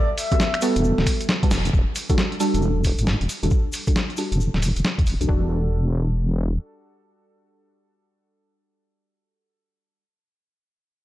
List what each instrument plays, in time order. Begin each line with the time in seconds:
0.18 soft synth lead E5, open hi-hat, shaker
0.31 synth stab G3 B3 F#4 A4, kick, closed hi-hat, high bongo, shaker
0.40 snare, shaker
0.54 finger snap, closed hi-hat
0.61 synth stab G3 B3 F#4 A4, open hi-hat, shaker
0.76 wobble bass E1, closed hi-hat, shaker
0.84 shaker
0.98 wobble bass D1, snare
1.06 finger snap, kick, open hi-hat, shaker
1.20 closed hi-hat, shaker
1.29 snare, shaker
1.43 synth stab G3 B3 F#4 A4, kick, closed hi-hat
1.51 wobble bass E1, snare, open hi-hat, shaker
1.65 closed hi-hat, shaker
1.73 wobble bass E1, kick, shaker
1.95 open hi-hat, shaker
2.09 synth stab G3 D4 F#4 A4, kick, closed hi-hat, shaker
2.18 snare, shaker
2.32 closed hi-hat
2.40 synth stab G3 D4 F#4 A4, open hi-hat, shaker
2.54 wobble bass E1, closed hi-hat, shaker
2.62 shaker
2.84 kick, open hi-hat, shaker
2.98 wobble bass G1, closed hi-hat, shaker
3.07 snare, shaker
3.21 wobble bass E1, closed hi-hat
3.29 open hi-hat, shaker
3.43 wobble bass E1, synth stab G3 D4 F#4 A4, closed hi-hat, shaker
3.51 kick, shaker
3.73 open hi-hat, shaker
3.87 synth stab G3 D4 F#4 A4, kick, closed hi-hat, shaker
3.96 snare, shaker
4.10 closed hi-hat
4.17 synth stab G3 D4 F#4 A4, open hi-hat, shaker
4.32 wobble bass E1, closed hi-hat, shaker
4.40 shaker
4.54 wobble bass D1, snare
4.62 wobble bass E1, open hi-hat, shaker
4.76 wobble bass E1, closed hi-hat, shaker
4.84 snare, shaker
4.98 wobble bass E2, kick, closed hi-hat
5.06 wobble bass E1, open hi-hat, shaker
5.21 wobble bass B1, synth stab G3 D4 F#4 A4, closed hi-hat, shaker
5.29 wobble bass E1, synth stab G3 D4 F#4 A4, kick